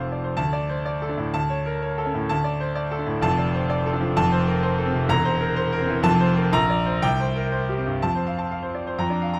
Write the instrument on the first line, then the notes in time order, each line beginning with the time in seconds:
grand piano
Already playing: F1 F2 C4 F5 A5
0.00 C5
0.12 D5
0.24 C5
0.37 D2 A5
0.53 D5
0.69 C5
0.86 D5
1.02 A4
1.09 D4
1.17 A2
1.34 D2 A5
1.50 C#5
1.66 A#4
1.82 C#5
1.98 A4
2.06 C#4
2.14 A2
2.29 D2 A5
2.44 D5
2.60 C5
2.75 D5
2.91 A4
2.99 D4
3.06 A2
3.21 F1 F2 A5
3.38 D5
3.54 C5
3.70 D5
3.86 A4
3.93 D4
4.01 F3
4.16 F1 F2 A5
4.32 C5
4.47 A#4
4.63 C5
4.78 A4
4.86 C4
4.93 C3
5.08 E1 E2 A#5
5.25 C5
5.41 A#4
5.56 C5
5.72 A#4
5.81 C4
5.89 E3
6.03 F1 F2 A5
6.21 C5
6.37 A#4
6.53 A#1 A#5
6.70 D5
6.86 C5
7.02 C2 G5
7.20 C5
7.36 A#4
7.52 C5
7.69 G4
7.78 C4
7.86 G2
8.02 F2 A5
8.15 C4 C5
8.26 F5
8.38 A5
8.51 F5
8.63 C5
8.75 D5
8.87 C5
8.99 F2 A#5
9.10 D4 D5
9.22 F5
9.34 A#5